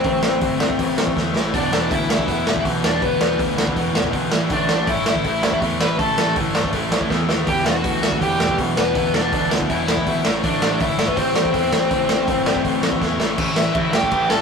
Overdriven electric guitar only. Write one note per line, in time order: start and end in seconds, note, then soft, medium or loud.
0.00 1.12 C4 medium
0.00 1.11 C5 medium
1.54 1.88 D4 medium
1.54 1.92 D5 medium
1.92 2.08 E4 medium
1.92 2.08 E5 loud
2.10 2.62 E4 medium
2.10 2.61 E5 loud
2.84 3.01 D4 medium
2.84 3.02 D5 medium
3.02 3.37 B3 medium
3.02 3.39 B4 medium
4.52 4.86 D4 medium
4.52 4.90 D5 medium
4.89 5.05 E4 medium
4.89 5.06 E5 medium
5.07 5.58 E4 medium
5.07 5.58 E5 loud
5.82 5.98 B4 medium
5.82 5.98 B5 medium
5.99 6.33 A4 medium
5.99 6.33 A5 loud
7.47 7.63 G4 medium
7.47 7.64 G5 loud
7.64 8.16 F#4 medium
7.64 8.17 F#5 loud
8.21 8.55 G4 medium
8.21 8.56 G5 loud
8.77 8.94 B3 medium
8.77 8.94 B4 medium
8.95 9.12 B3 medium
8.95 9.14 B4 medium
9.15 9.49 D4 medium
9.15 9.49 D5 loud
9.70 10.21 E4 medium
9.70 10.21 E5 loud
10.44 10.78 D4 medium
10.44 10.81 D5 loud
10.81 11.06 E4 medium
10.81 11.09 E5 loud
11.09 11.17 B3 medium
11.09 11.17 B4 medium
11.17 12.98 C4 medium
11.17 12.98 C5 medium
13.57 13.74 E4 medium
13.57 13.73 E5 loud
13.75 13.92 E4 medium
13.75 13.94 E5 medium
13.93 14.28 G4 medium
13.93 14.30 G5 loud
14.30 14.42 A4 medium
14.30 14.42 A5 medium